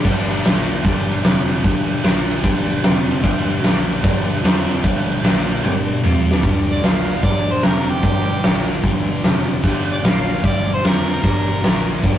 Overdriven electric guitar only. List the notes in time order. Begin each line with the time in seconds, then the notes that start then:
Already playing: A#3
0.04 G2 D3 G3
0.44 A#2 F3 A#3
0.85 G2 D3 G3
1.24 F2 C3 F3
1.64 G2 D3 G3
2.04 A#2 F3 A#3
2.43 G2 D3 G3
2.83 F2 C3 F3
3.23 G2 D3 G3
3.63 A#2 F3 A#3
4.03 G2 D3 G3
4.43 F3 C4 F4
4.84 G2 D3 G3
5.23 A#2 F3 A#3
5.63 G2 D3 G3
6.03 F3 C4 F4
6.43 G2 D3 G3
6.83 A#2 F3 A#3
7.23 G2 D3 G3
7.63 F2 C3 F3
8.04 G2 D3 G3
8.43 A#2 F3 A#3
8.84 G2 D3 G3
9.23 F2 C3 F3
9.63 G2 D3 G3
10.03 A#2 F3 A#3
10.43 G2 D3 G3
10.83 F3 C4 F4
11.22 G2 D3 G3
11.63 A#2 F3 A#3
12.03 G2 D3 G3